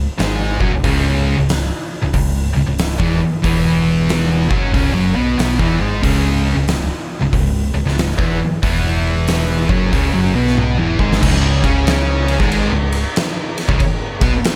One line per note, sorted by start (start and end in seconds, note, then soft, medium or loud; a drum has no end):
0.18 0.58 G#1 medium
0.18 0.59 G#2 medium
0.18 0.59 G#3 medium
0.18 snare loud
0.18 open hi-hat medium
0.60 0.71 F#1 medium
0.60 0.72 F#2 medium
0.60 0.72 F#3 medium
0.60 kick medium
0.72 0.83 C#1 medium
0.72 0.83 C#2 medium
0.84 1.33 C#1 medium
0.84 1.36 C#2 medium
0.84 1.37 C#3 loud
0.84 kick loud
0.84 open hi-hat medium
1.38 1.68 C#1 medium
1.38 1.62 C#2 medium
1.49 snare loud
1.49 open hi-hat medium
2.02 2.14 C#1 medium
2.02 2.12 C#2 medium
2.13 2.53 C#1 medium
2.13 2.47 C#2 medium
2.13 kick medium
2.13 open hi-hat medium
2.56 2.66 C#1 medium
2.56 2.66 C#2 medium
2.67 2.97 C#1 medium
2.67 2.91 C#2 medium
2.79 snare loud
2.79 open hi-hat medium
2.99 3.19 E1 medium
2.99 3.19 E2 medium
2.99 3.19 E3 loud
2.99 kick loud
3.42 4.46 E1 medium
3.42 4.48 E2 loud
3.42 4.48 E3 loud
3.42 kick loud
3.42 open hi-hat medium
4.09 snare loud
4.09 open hi-hat medium
4.49 4.72 F#1 medium
4.49 4.72 F#2 medium
4.49 4.72 F#3 medium
4.49 kick loud
4.73 4.93 C#1 medium
4.73 4.93 C#2 medium
4.73 4.93 C#3 loud
4.73 kick loud
4.73 open hi-hat soft
4.93 5.13 F#1 medium
4.93 5.13 F#2 medium
4.93 5.13 F#3 loud
5.14 5.37 B1 loud
5.14 5.37 B2 medium
5.14 5.38 B3 loud
5.38 5.57 B1 medium
5.38 5.58 B2 medium
5.38 5.58 B3 loud
5.38 snare loud
5.38 open hi-hat medium
5.59 5.78 E1 medium
5.59 5.78 E2 medium
5.59 5.79 E3 loud
5.59 kick loud
5.79 6.01 G#1 medium
5.79 6.02 G#2 medium
5.79 6.03 G#3 medium
6.03 6.53 C#1 medium
6.03 6.55 C#2 loud
6.03 6.56 C#3 loud
6.03 kick loud
6.03 open hi-hat medium
6.56 6.86 C#1 medium
6.56 6.80 C#2 medium
6.68 snare loud
6.68 open hi-hat medium
7.20 7.32 C#1 medium
7.20 7.31 C#2 medium
7.32 7.71 C#1 medium
7.32 7.66 C#2 medium
7.32 kick medium
7.32 open hi-hat medium
7.74 7.85 C#1 medium
7.74 7.85 C#2 medium
7.86 8.16 C#1 medium
7.86 8.10 C#2 medium
7.86 snare soft
7.98 snare loud
7.98 open hi-hat medium
8.18 8.38 E1 loud
8.18 8.38 E2 medium
8.18 8.38 E3 loud
8.18 kick loud
8.63 9.65 E1 loud
8.63 9.68 E2 medium
8.63 9.68 E3 loud
8.63 kick loud
8.63 open hi-hat medium
9.28 snare loud
9.28 open hi-hat medium
9.69 9.91 F#1 medium
9.69 9.92 F#2 medium
9.69 9.92 F#3 loud
9.69 kick loud
9.93 10.12 C#1 loud
9.93 10.12 C#2 medium
9.93 10.13 C#3 loud
9.93 kick loud
9.93 open hi-hat medium
10.13 10.32 F#1 loud
10.13 10.33 F#2 medium
10.13 10.33 F#3 loud
10.34 10.56 B1 loud
10.34 10.57 B2 loud
10.34 10.57 B3 medium
10.47 snare soft
10.57 10.76 B1 medium
10.57 10.77 B2 medium
10.57 10.77 B3 medium
10.57 high tom medium
10.77 10.97 E1 medium
10.77 10.98 E2 medium
10.77 10.98 E3 loud
10.99 11.21 G#1 loud
10.99 11.21 G#2 loud
10.99 11.22 G#3 medium
10.99 kick medium
11.13 snare medium
11.22 11.61 C#1 loud
11.22 11.62 C#2 medium
11.22 11.62 C#3 loud
11.22 kick loud
11.22 crash loud
11.63 12.36 C#2 loud
11.63 12.39 C#3 loud
11.63 12.39 C#4 loud
11.63 kick loud
11.63 ride medium
11.87 snare loud
11.87 ride loud
12.28 ride medium
12.39 12.70 G#1 medium
12.39 12.70 G#2 medium
12.39 12.71 G#3 loud
12.39 kick loud
12.39 snare soft
12.52 ride loud
12.71 13.02 C#1 medium
12.71 12.99 C#2 medium
12.92 ride medium
13.16 snare loud
13.16 ride loud
13.58 snare soft
13.58 ride medium
13.69 13.79 C#1 loud
13.69 13.79 C#2 medium
13.69 13.80 C#3 medium
13.69 kick loud
13.80 muted distorted electric guitar stroke medium
13.80 muted fingered electric bass stroke soft
13.80 kick loud
13.80 ride loud
14.21 14.32 B1 loud
14.21 14.32 B2 loud
14.21 14.33 B3 loud
14.21 kick loud
14.21 ride medium
14.44 snare loud
14.44 ride loud